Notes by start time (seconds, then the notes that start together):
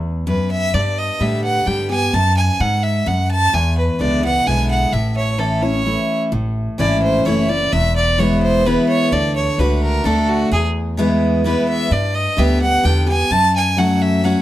Already playing: E2
0.27 F#2 B4
0.51 E5
0.74 G2 D5
0.98 D#5
1.19 A2 D3 G3 B3 G4 E5
1.44 F#5
1.65 G2 D3 G3 B3 G4 G5
1.90 B3 G4 G#5
2.13 F#2 A5
2.37 G#5
2.60 G#2 F#5
2.83 E5
3.06 F#2 F#5
3.31 A5
3.53 E2 G#5
3.78 B4
3.99 C#2 D3 G#3 B3 E4 D5
4.23 B3 E4 F#5
4.46 B1 D3 G#3 B3 E4 G#5
4.71 F#5
4.93 A1 A2 E5
5.17 C#5
5.38 E3 A3 C#4 E4 A4
5.62 C#4 E4 C#5
5.85 E3 A3 C#4 E4
6.32 A1 A2
6.78 G#1 E3 A3 C#4 E4 D5
7.03 C5
7.25 F#1 E3 A3 C#4 E4 C#5
7.48 C#4 E4 D5
7.72 E1 E2 E5
7.96 D5
8.18 E3 G#3 B3 E4 C#5
8.43 C5
8.65 E3 G#3 B3 E4 B4
8.88 C#5
9.12 D2 D3 D5
9.36 C#5
9.58 C#2 A3 D4 F#4 B4
9.83 A#4
10.04 D2 D3 A3 D4 F#4 A4
10.29 F#4
10.51 E2 G#4
10.97 E3 G#3 B3 E4
11.44 E3 G#3 B3 E4 B4
11.68 E5
11.91 G2 D5
12.15 D#5
12.37 D2 D3 G3 B3 G4 E5
12.60 B3 G4 F#5
12.83 E2 D3 G3 B3 G4 G5
13.06 B3 G4 G#5
13.30 F#2 A5
13.56 G#5
13.77 F#3 A3 C#4 F#4 F#5
14.02 E5
14.24 F#3 A3 C#4 F#4 F#5